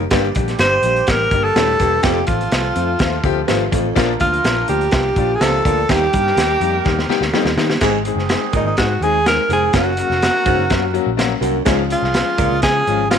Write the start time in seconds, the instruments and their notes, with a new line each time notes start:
0.11 picked electric bass G1, baritone saxophone G2, horn section D3 A#3 G4, grand piano G3 A#3 D4 G4, kick, snare, closed hi-hat
0.35 picked electric bass A#1, grand piano G3 A#3 D4 G4, kick, closed hi-hat
0.48 snare, closed hi-hat
0.59 picked electric bass G1, grand piano G3 A#3 D4 G4, tenor saxophone C5, snare, closed hi-hat
0.82 picked electric bass A#1, grand piano G3 A#3 D4 G4, closed hi-hat
0.96 closed hi-hat
1.07 picked electric bass A1, grand piano G3 A#3 D4 G4, kick, snare, closed hi-hat
1.11 tenor saxophone A#4
1.31 picked electric bass G1, grand piano G3 A#3 D4 G4, kick, closed hi-hat
1.45 tenor saxophone A4
1.56 picked electric bass D#1, baritone saxophone A2, grand piano G3 A#3 D4 G4, snare, closed hi-hat
1.79 picked electric bass E1, baritone saxophone G2, grand piano G3 A#3 D4 G4, kick, closed hi-hat
2.02 picked electric bass F1, baritone saxophone F2, horn section F3 C4 A4, grand piano F3 A3 C4 F4, tenor saxophone G4, kick, snare, closed hi-hat
2.27 picked electric bass A1, grand piano F3 A3 C4 F4, tenor saxophone F4, kick, closed hi-hat
2.41 closed hi-hat
2.51 picked electric bass C2, grand piano F3 A3 C4 F4, snare, closed hi-hat
2.76 picked electric bass F2, grand piano F3 A3 C4 F4, closed hi-hat
2.99 picked electric bass D#2, grand piano F3 A3 C4 F4, kick, snare, closed hi-hat
3.24 picked electric bass D2, grand piano F3 A3 C4 G4, kick, closed hi-hat
3.47 picked electric bass G#1, baritone saxophone G2, grand piano F3 A3 C4 F4, snare, closed hi-hat
3.71 picked electric bass A1, baritone saxophone F2, grand piano F3 A3 C4 F4, kick, closed hi-hat
3.95 picked electric bass A#1, baritone saxophone A#2, grand piano F3 A#3 D4 F4, horn section F3 D4 A#4, kick, snare, closed hi-hat
4.20 picked electric bass D2, grand piano F3 A#3 D4 F4, tenor saxophone F4, kick, closed hi-hat
4.34 closed hi-hat
4.44 picked electric bass A#1, grand piano F3 A#3 D4 F4, snare, closed hi-hat
4.68 picked electric bass D2, grand piano F3 A#3 D4 F4, tenor saxophone G4, closed hi-hat
4.81 closed hi-hat
4.91 picked electric bass C2, grand piano F3 A#3 D4 F4, kick, snare, closed hi-hat
5.16 picked electric bass A#1, grand piano F3 A#3 D4 F4, kick, closed hi-hat
5.35 tenor saxophone G#4
5.41 picked electric bass C#2, baritone saxophone C3, grand piano F3 A#3 D4 F4, tenor saxophone A4, snare, closed hi-hat
5.65 picked electric bass D2, baritone saxophone A#2, grand piano F3 A#3 D4 F4, kick, closed hi-hat
5.88 picked electric bass D#2, baritone saxophone D#2, horn section G3 D#4 A#4, grand piano G3 A#3 D#4 G4, tenor saxophone G4, kick, snare, closed hi-hat
6.13 picked electric bass G2, grand piano G3 A#3 D#4 G4, kick, closed hi-hat
6.27 snare
6.37 picked electric bass D#2, grand piano G3 A#3 D#4 G4, snare, closed hi-hat
6.60 picked electric bass F2, grand piano G3 A#3 D#4 G4, closed hi-hat
6.85 picked electric bass D#2, grand piano G3 A#3 D#4 G4, kick, snare
6.99 snare
7.09 grand piano G3 A#3 D#4 G4, muted picked electric bass stroke, snare
7.21 picked electric bass D2, snare
7.32 baritone saxophone F2, grand piano G3 A#3 D#4 G4, snare
7.45 picked electric bass D#2, snare
7.56 baritone saxophone D#2, picked electric bass D#3, grand piano G3 A#3 D#4 G4, snare
7.70 snare
7.81 picked electric bass G#1, baritone saxophone G#2, horn section D#3 C4 G#4, grand piano G#3 C4 D#4 G#4, kick, snare, closed hi-hat
8.05 grand piano G#3 C4 D#4 G#4, closed hi-hat
8.16 picked electric bass F#1, snare
8.29 grand piano G#3 C4 D#4 G#4, snare, closed hi-hat
8.53 picked electric bass G#1, baritone saxophone A#2, grand piano G#3 C4 D#4 G#4, tenor saxophone D#4, kick, closed hi-hat
8.64 picked electric bass G#1, tenor saxophone D#4
8.77 picked electric bass G#2, grand piano G#3 C4 D#4 G#4, tenor saxophone F#4, kick, snare, closed hi-hat
9.00 picked electric bass D#2, grand piano G#3 C4 D#4 G#4, tenor saxophone G#4, closed hi-hat
9.26 grand piano G#3 C4 D#4 G#4, tenor saxophone A#4, snare, closed hi-hat
9.49 picked electric bass F1, baritone saxophone G#2, grand piano G#3 C4 D#4 G#4, closed hi-hat
9.53 tenor saxophone G#4
9.73 picked electric bass F#1, baritone saxophone F#2, horn section F#3 C#4 A#4, grand piano F#3 A#3 C#4 F#4, tenor saxophone F#4, kick, snare, closed hi-hat
9.97 grand piano F#3 A#3 C#4 F#4, closed hi-hat
10.10 picked electric bass F1, snare
10.22 grand piano F#3 A#3 C#4 F#4, snare, closed hi-hat
10.45 picked electric bass F#1, baritone saxophone G#2, grand piano F#3 A#3 C#4 F#4, kick, closed hi-hat
10.57 picked electric bass F#1
10.70 picked electric bass F#2, grand piano F#3 A#3 C#4 F#4, kick, snare, closed hi-hat
10.94 grand piano F#3 A#3 C#4 F#4, closed hi-hat
11.06 picked electric bass A#1
11.17 grand piano F#3 A#3 C#4 F#4, snare, closed hi-hat
11.41 picked electric bass C2, baritone saxophone F#2, grand piano F#3 A#3 C#4 F#4, closed hi-hat
11.65 picked electric bass C#2, baritone saxophone G#2, grand piano F3 G#3 C#4 F4, horn section F3 C#4 G#4, kick, snare, closed hi-hat
11.90 grand piano F3 G#3 C#4 F4, tenor saxophone F4, closed hi-hat
12.02 picked electric bass C2, snare
12.13 grand piano F3 G#3 C#4 F4, snare, closed hi-hat
12.38 picked electric bass C#2, baritone saxophone A#2, grand piano F3 G#3 C#4 F4, kick, closed hi-hat
12.51 picked electric bass C#2
12.62 picked electric bass C#3, grand piano F3 G#3 C#4 F4, tenor saxophone G#4, kick, snare, closed hi-hat
12.87 picked electric bass G#1, grand piano F3 G#3 C#4 F4, closed hi-hat
13.10 grand piano F3 G#3 C#4 F4, tenor saxophone F4, snare, closed hi-hat